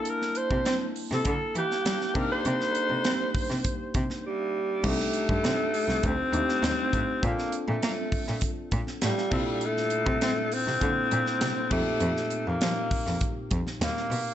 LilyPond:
<<
  \new Staff \with { instrumentName = "Tine electric piano" } { \time 4/4 \key c \dorian \tempo 4 = 100 <bes d' e' a''>2.~ <bes d' e' a''>8 <bes d' ees' g'>8~ | <bes d' ees' g'>2.~ <bes d' ees' g'>8 r8 | <a d' ees' g'>2~ <a d' ees' g'>8 <a d' ees' g'>4. | <c' d' f' a'>2.~ <c' d' f' a'>8 <bes, d' e' a'>8~ |
<bes, d' e' a'>2 <bes d' e' a'>4. <bes, c' ees' g'>8~ | <bes, c' ees' g'>2.~ <bes, c' ees' g'>8 r8 | }
  \new Staff \with { instrumentName = "Alto saxophone" } { \time 4/4 \key c \dorian bes'8 c''8. r8 a'16 a'8 g'4 bes'16 c''16~ | c''2. g4 | a2 c'2 | bes8. a4. r8. g4 |
a4. c'2 a8~ | a8. bes4. r8. bes4 | }
  \new Staff \with { instrumentName = "Cello" } { \clef bass \time 4/4 \key c \dorian r8. c16 c'8 r16 c16 d8 e8 g8 c8 | c16 r8 c16 c'8 r16 c16 r8 c8 r4 | c,16 r8 g,16 c8 r16 c,16 d,8 ees,8 ees,8 a,8 | bes,16 r8 bes,16 bes8 r16 bes,16 r8 bes,8 a,8 c8~ |
c16 r8 c16 c'8 r16 c16 d8 bes,8 c8 f,8 | f,16 r8 f,16 f8 r16 f,16 r8 f,8 ees,8 b,8 | }
  \new DrumStaff \with { instrumentName = "Drums" } \drummode { \time 4/4 hh16 sn16 hh16 bd16 <hh sn>8 hho16 sn16 <hh bd>8 hh16 sn16 <hh sn>16 sn16 <cymc bd>8 | hh16 sn16 hh8 <hh sn>8 <hho bd>16 sn16 <hh bd>8 <hh bd>16 sn16 r4 | <cymc bd>16 sn16 hh16 bd16 <hh sn>8 hho16 sn16 <hh bd>8 hh16 sn16 <hh sn>8 <hh bd>8 | <hh bd>16 sn16 hh8 <hh sn>8 <hho bd>16 sn16 <hh bd>8 <hh bd>16 sn16 <hh sn>16 sn16 <cymc bd>8 |
hh16 sn16 hh16 bd16 <hh sn>8 hho16 sn16 <hh bd>8 hh16 sn16 <hh sn>8 <cymc bd>8 | hh16 sn16 hh8 <hh sn>8 <hho bd>16 sn16 <hh bd>8 <hh bd>16 sn16 <hh sn>16 sn16 hho8 | }
>>